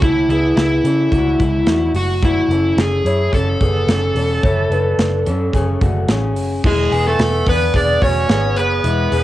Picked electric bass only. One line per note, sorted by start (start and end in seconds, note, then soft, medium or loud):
0.02 0.25 C#2 loud
0.29 0.52 C#2 medium
0.57 0.80 C#2 medium
0.84 1.07 C#3 medium
1.12 1.35 C#2 medium
1.39 1.62 C#2 medium
1.67 1.90 E2 medium
1.94 2.40 F#1 medium
2.49 2.72 F#1 medium
2.77 3.00 F#1 loud
3.05 3.28 F#2 medium
3.32 3.55 F#1 medium
3.61 3.83 F#1 medium
3.87 4.10 F#1 medium
4.15 4.38 E1 medium
4.43 4.66 F#1 loud
4.70 4.93 F#1 medium
4.98 5.27 F#1 medium
5.26 5.49 F#2 medium
5.53 5.76 F#1 loud
5.81 6.04 F#1 medium
6.08 6.36 A1 medium
6.36 6.59 F#1 medium
6.64 6.86 E1 loud
6.91 7.14 E1 medium
7.19 7.41 E1 loud
7.46 7.69 E2 medium
7.74 7.96 E1 loud
8.02 8.24 E1 medium
8.29 8.57 G#1 medium
8.57 8.79 F#1 medium
8.84 9.06 E1 loud
9.11 9.23 E1 medium